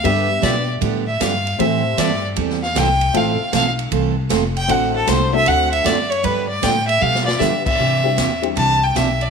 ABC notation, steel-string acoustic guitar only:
X:1
M:4/4
L:1/16
Q:"Swing" 1/4=155
K:C
V:1 name="Steel-string acoustic guitar"
[D,G,B,DG]2 z2 [D,G,B,DG] z3 [D,G,B,DG]2 z2 [D,G,B,DG] z3 | [E,G,CEA]2 z2 [E,G,CEA] z3 [E,G,CEA]2 z2 [E,G,CEA] z3 | [E,A,CFA]2 z2 [E,A,CFA] z3 [E,A,CFA]2 z2 [E,A,CFA] z3 | [D,A,C^FA]2 z2 [D,A,CFA] z3 [D,A,CFA]2 z2 [D,A,CFA] z3 |
[D,G,B,DG]2 z2 [D,G,B,DG] z3 [D,G,B,DG]2 z2 [D,G,B,DG] z3 | [C,E,DG]2 z2 [C,E,DG] z3 [C,E,DG]2 z2 [C,E,DG] z3 |]